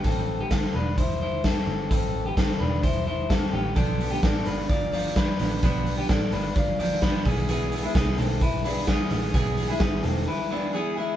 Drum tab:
HH |x-x-x-x-|x-x-x-x-|xoxoxoxo|xoxoxoxo|
SD |--o---o-|--o---o-|--o---o-|--o---o-|
BD |o-o-o-o-|o-o-o-o-|o-o-o-o-|o-o-o-oo|

HH |xoxoxoxo|xoxo----|
SD |--o---o-|--o-----|
BD |--o-o-o-|o-o-----|